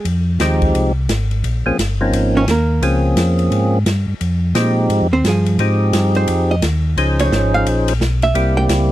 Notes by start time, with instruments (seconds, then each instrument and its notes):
0.05 tonewheel organ F2, ride
0.40 tonewheel organ D#2 F3 G#3 C4 D#4 G4, snare, hi-hat pedal, ride
0.62 kick, ride
0.75 tonewheel organ C2, ride
1.09 tonewheel organ G#1, snare, hi-hat pedal, ride
1.31 ride
1.44 tonewheel organ A#1, ride
1.66 tonewheel organ A#1 F3 A#3 C4 C#4 G#4
1.79 tonewheel organ G1, snare, hi-hat pedal, ride
2.01 tonewheel organ F3 A#3 C4 C#4 D#4
2.13 tonewheel organ G#1, ride
2.37 hollow-body jazz guitar C#4 C#5
2.47 tonewheel organ D#2, hollow-body jazz guitar A#3, snare, hi-hat pedal, ride
2.51 hollow-body jazz guitar A#4
2.81 tonewheel organ C#2 F3 A#3 C4 C#4 G#4, ride
3.16 tonewheel organ F2, snare, hi-hat pedal, ride
3.39 ride
3.51 tonewheel organ G#2, ride
3.86 tonewheel organ G2, snare, hi-hat pedal, ride
4.08 tonewheel organ G2
4.21 tonewheel organ F2, ride
4.55 tonewheel organ A#2 F3 G#3 C4 D#4 G4, snare, hi-hat pedal, ride
4.90 tonewheel organ G#2, ride
5.01 tonewheel organ F2
5.13 tonewheel organ D#2, hollow-body jazz guitar C4 C5
5.24 tonewheel organ G2, hollow-body jazz guitar F3 G#4, snare, hi-hat pedal, ride
5.46 ride
5.59 tonewheel organ G#2 F3 C4 D#4 G4 G#4, ride
5.93 tonewheel organ G2, snare, hi-hat pedal, ride
6.15 hollow-body jazz guitar C5, ride
6.27 tonewheel organ F2, ride
6.51 hollow-body jazz guitar D#5
6.62 tonewheel organ D#2, snare, hi-hat pedal, ride
6.97 tonewheel organ C#2 F3 C#4 D#4 G#4 C5, ride
7.19 hollow-body jazz guitar C#5, ride
7.32 tonewheel organ G#1, snare, hi-hat pedal
7.54 hollow-body jazz guitar F5
7.66 tonewheel organ A#1, ride
7.88 ride
8.00 tonewheel organ B1, snare, hi-hat pedal
8.22 hollow-body jazz guitar E5, ride
8.34 tonewheel organ C2 G3 A#3 C4 E4 G4, ride
8.57 hollow-body jazz guitar G5
8.69 tonewheel organ C#2, snare, hi-hat pedal, ride